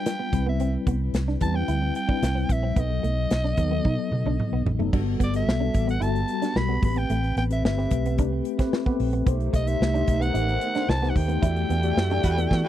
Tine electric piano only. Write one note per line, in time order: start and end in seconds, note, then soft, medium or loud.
0.00 0.33 G3 medium
0.00 0.35 D4 medium
0.00 0.35 F4 medium
0.00 0.33 B4 medium
0.33 1.19 G3 medium
0.33 1.20 C4 medium
0.33 1.20 E4 medium
0.33 1.20 B4 medium
1.41 1.89 G3 medium
1.41 1.89 C4 medium
1.41 1.89 E4 medium
1.41 1.89 B4 medium
2.08 2.56 G3 medium
2.08 2.56 C4 medium
2.08 2.56 E4 medium
2.08 2.57 B4 medium
2.76 3.34 F#3 medium
2.76 3.34 B3 medium
2.76 3.34 D#4 medium
2.76 3.34 A4 medium
3.57 4.34 F#3 medium
3.57 4.34 B3 medium
3.57 4.34 D#4 medium
3.57 4.34 A4 medium
4.79 4.89 F#3 medium
4.79 4.89 B3 medium
4.79 4.89 D#4 medium
4.79 4.89 A4 medium
4.93 5.22 G3 medium
4.93 5.22 B3 medium
4.93 5.22 F#4 medium
4.93 5.22 A4 medium
5.33 5.53 G3 medium
5.33 5.53 B3 medium
5.33 5.53 F#4 medium
5.33 5.53 A4 medium
5.61 5.89 G3 medium
5.61 5.90 B3 medium
5.61 5.90 F#4 medium
5.61 5.90 A4 medium
6.01 6.30 G3 medium
6.01 6.30 B3 medium
6.01 6.30 F#4 medium
6.01 6.31 A4 medium
6.42 6.61 G3 medium
6.42 6.61 B3 medium
6.42 6.62 F#4 medium
6.42 6.62 A4 medium
6.70 6.83 G3 medium
6.70 6.83 B3 medium
6.70 6.84 F#4 medium
6.70 6.84 A4 medium
6.84 7.38 A3 medium
6.84 6.90 B3 medium
6.84 7.38 G4 medium
6.84 7.38 B4 medium
6.91 7.41 C4 medium
7.50 7.69 A3 medium
7.50 7.69 C4 medium
7.50 7.70 G4 medium
7.50 7.70 B4 medium
7.77 8.06 A3 medium
7.77 8.06 C4 medium
7.77 8.06 G4 medium
7.77 8.06 B4 medium
8.17 8.46 A3 medium
8.17 8.46 C4 medium
8.17 8.47 G4 medium
8.17 8.47 B4 medium
8.58 8.78 A3 medium
8.58 8.78 C4 medium
8.58 8.78 G4 medium
8.58 8.78 B4 medium
8.85 9.14 A3 medium
8.85 9.14 C4 medium
8.85 9.15 G4 medium
8.85 9.15 B4 loud
9.26 9.55 A3 medium
9.26 9.55 D#4 medium
9.26 9.56 G4 medium
9.26 9.56 C5 medium
9.67 9.86 A3 medium
9.67 9.86 D#4 medium
9.67 9.87 G4 medium
9.67 9.87 C5 medium
9.94 10.23 A3 medium
9.94 10.23 D#4 medium
9.94 10.23 G4 medium
9.94 10.23 C5 medium
10.33 10.63 A3 medium
10.33 10.63 D#4 medium
10.33 10.63 G4 medium
10.33 10.63 C5 medium
10.75 10.94 A3 medium
10.75 10.94 D#4 medium
10.75 10.95 G4 medium
10.75 10.95 C5 medium
11.02 11.31 A3 medium
11.02 11.31 D#4 medium
11.02 11.31 G4 medium
11.02 11.31 C5 medium
11.42 11.71 A3 medium
11.42 11.71 F#4 medium
11.42 11.71 G4 medium
11.42 11.72 D5 medium
11.83 12.02 A3 medium
11.83 12.03 F#4 medium
11.83 12.03 G4 medium
11.83 12.03 D5 medium
12.10 12.39 A3 medium
12.10 12.39 F#4 medium
12.10 12.39 G4 medium
12.10 12.39 D5 loud
12.50 12.68 A3 medium
12.50 12.68 F#4 medium
12.50 12.68 G4 medium
12.50 12.68 D5 medium